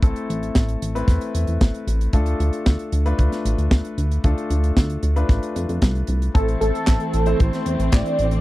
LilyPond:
<<
  \new Staff \with { instrumentName = "Analog synth lead" } { \time 4/4 \key a \minor \tempo 4 = 114 r1 | r1 | r1 | a'8 a'4. c''4 d''4 | }
  \new Staff \with { instrumentName = "Grand piano" } { \time 4/4 \key a \minor <a c' e' a'>4.~ <a c' e' a'>16 <a c' e' b'>2~ <a c' e' b'>16 | <a d' f' a'>4.~ <a d' f' a'>16 <a d' f' b'>2~ <a d' f' b'>16 | <a d' f' a'>4.~ <a d' f' a'>16 <a d' f' b'>2~ <a d' f' b'>16 | <a c' e' a'>4.~ <a c' e' a'>16 <a c' e' c''>2~ <a c' e' c''>16 | }
  \new Staff \with { instrumentName = "String section" } { \time 4/4 \key a \minor r1 | r1 | r1 | <e a c'>1 | }
  \new Staff \with { instrumentName = "Analog synth bass" } { \clef bass \time 4/4 \key a \minor a,,16 r16 a,,8 a,,8 a,,8 e,16 r16 e,16 e,16 a,,16 r16 a,,8 | d,8 d,16 r16 d,16 r16 d,8 d,16 r16 a,,16 d,16 d,16 r16 d,8 | d,16 r16 d,8 d,8 d,8 a,,16 r16 f,16 f,16 c,8 c,8 | a,,8 a,,16 r16 a,,16 r16 a,,8 a,,16 r16 e,16 a,,16 a,,16 r16 a,,8 | }
  \new DrumStaff \with { instrumentName = "Drums" } \drummode { \time 4/4 <hh bd>16 hh16 hh16 hh16 <hh bd sn>16 hh16 hh16 hh16 <hh bd sn>16 hh16 hh16 hh16 <hh bd sn>16 hh16 hh16 hh16 | <hh bd>16 hh16 hh16 hh16 <hh bd sn>16 hh16 hh16 hh16 <hh bd>16 <hh sn>16 hh16 hh16 <hh bd sn>16 hh16 hh16 hh16 | <hh bd>16 hh16 hh16 hh16 <hh bd sn>16 hh16 hh16 hh16 <hh bd sn>16 hh16 hh16 hh16 <hh bd sn>16 hh16 hh16 hh16 | <hh bd>16 hh16 hh16 hh16 <hc hh bd sn>16 hh16 hh16 hh16 <hh bd>16 <hh sn>16 hh16 hh16 <hc hh bd sn>16 hh16 hh16 hh16 | }
>>